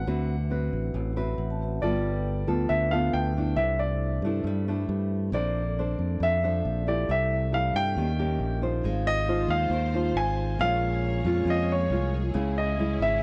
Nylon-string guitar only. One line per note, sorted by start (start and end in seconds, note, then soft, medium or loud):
0.07 0.93 D3 medium
0.07 0.35 C4 medium
0.07 0.35 F#4 medium
0.07 0.35 B4 medium
0.50 1.13 C4 medium
0.50 1.13 F#4 medium
0.50 1.13 B4 medium
0.95 1.80 A2 soft
1.16 1.79 C4 medium
1.16 1.79 F#4 medium
1.16 1.79 B4 medium
1.83 2.68 G3 medium
1.83 2.45 B3 medium
1.83 2.45 F4 medium
1.83 2.45 A4 medium
2.47 2.88 B3 medium
2.47 2.88 F4 medium
2.47 2.88 A4 medium
2.69 3.55 D3 medium
2.93 3.33 B3 medium
2.93 3.33 F4 medium
2.93 3.33 A4 medium
3.37 4.20 A3 medium
3.37 4.21 D4 medium
3.37 4.21 E4 medium
3.58 4.43 C3 medium
4.24 4.64 A3 medium
4.24 4.64 D4 medium
4.24 4.65 E4 medium
4.47 5.32 G3 medium
4.68 5.30 A3 medium
4.68 5.30 D4 medium
4.68 5.30 E4 medium
5.33 6.19 A#3 medium
5.33 5.62 D4 medium
5.33 5.62 A4 medium
5.33 5.62 C5 medium
5.79 6.40 D4 medium
5.79 6.41 A4 medium
5.79 6.40 C5 medium
6.23 7.07 F3 medium
6.44 6.84 D4 medium
6.44 6.84 A4 medium
6.44 6.84 C5 medium
6.87 7.49 A3 medium
6.87 7.49 E4 medium
6.87 7.49 G4 medium
7.10 7.95 C3 medium
7.52 7.82 A3 medium
7.52 7.82 E4 medium
7.52 7.82 G4 medium
7.97 8.83 D#3 soft
7.97 8.10 A#3 soft
7.97 8.10 C#4 soft
7.97 8.10 G4 medium
8.19 8.59 A#3 medium
8.19 8.59 C#4 medium
8.19 8.59 G4 medium
8.62 9.24 D#4 medium
8.62 9.24 F4 medium
8.62 9.25 C5 medium
8.85 9.70 G#3 medium
9.28 9.72 D#4 medium
9.28 9.72 F4 medium
9.28 9.72 C5 medium
9.73 10.58 D#3 medium
9.94 10.56 D#4 medium
9.94 10.56 F4 medium
9.94 10.57 C5 medium
10.59 11.45 A#2 medium
10.59 11.22 G#3 medium
10.59 11.22 C#4 medium
10.59 11.22 F4 medium
11.25 11.88 G#3 medium
11.25 11.88 C#4 medium
11.25 11.88 F4 medium
11.47 12.33 F3 medium
11.91 12.21 G#3 medium
11.91 12.21 C#4 medium
11.91 12.21 F4 medium
12.34 13.20 C#3 medium
12.34 12.75 G#3 medium
12.34 12.75 C#4 medium
12.34 12.75 E4 medium
12.79 13.23 G#3 medium
12.79 13.23 C#4 medium
12.79 13.23 E4 medium